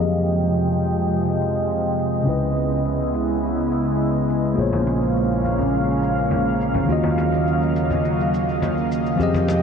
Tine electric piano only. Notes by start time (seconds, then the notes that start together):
Already playing: F3 C4 G4
0.00 G#4 D#5
2.23 C#3 C#4 E4
2.29 B4 D#5
4.54 A#3 F4 G#4
4.59 C5 C#5
6.85 D#3 C#4 F4
6.91 F#4 D#5
9.16 F3 C4 G4
9.21 G#4 D#5